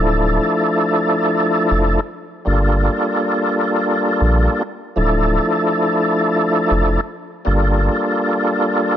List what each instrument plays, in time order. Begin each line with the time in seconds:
Already playing: sub bass D1, tonewheel organ F3 A3 D4 E4 A4
1.71 sub bass F1
2.45 sub bass G1, tonewheel organ G3 A#3 D4 F4 A4
4.21 sub bass A#1
4.96 sub bass D1, tonewheel organ F3 A3 D4 E4 A4
6.71 sub bass F1
7.45 sub bass G1, tonewheel organ G3 A#3 D4 F4 A4